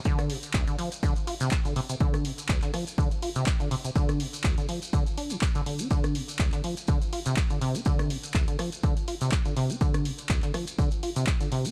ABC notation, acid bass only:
X:1
M:4/4
L:1/16
Q:"Swing 16ths" 1/4=123
K:Dm
V:1 name="Acid bass" clef=bass
D,2 C, z D,, D, F, z D, z F C, z D, C, C, | D,2 C, z D,, D, F, z D, z F C, z D, C, C, | D,2 C, z D,, D, F, z D, z D D, z D, D, D | D,2 C, z D,, D, F, z D, z F C, z D, C, D |
D,2 C, z D,, D, F, z D, z F C, z D, C, D | D,2 C, z D,, D, F, z D, z F C, z D, C, D |]